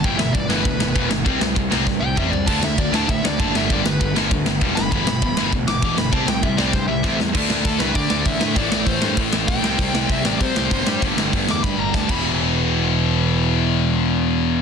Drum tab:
CC |--------|--------|x-------|--------|
RD |x-x-x-x-|x-x-----|--x-x-x-|x-x-x-x-|
HH |--------|--------|--------|--------|
SD |-o-o-o-o|-o-oo---|-o-o-o-o|-o-o-o-o|
T2 |--------|------o-|--------|--------|
FT |--------|-------o|--------|--------|
BD |o-o-o-o-|o-o-o-o-|o-o-o-o-|o-o-o-o-|

CC |--------|--------|x-------|--------|
RD |x-x-x-x-|x-x-----|--------|--------|
HH |--------|--------|--o-o-o-|o-o-o-o-|
SD |-o-o-o-o|-o-oo-oo|-o-o-o-o|-o-o-o-o|
T2 |--------|--------|--------|--------|
FT |--------|--------|--------|--------|
BD |o-o-o-o-|o-o-o-o-|o-o-o-o-|o-o-o-o-|

CC |--------|-------x|--------|--------|
RD |--------|--------|--------|--------|
HH |o-o-o-o-|o-o-----|--------|--------|
SD |-o-o-o-o|-o-oo-o-|--------|--------|
T2 |--------|--------|--------|--------|
FT |--------|--------|--------|--------|
BD |o-o-o-o-|o-o-o-oo|--------|--------|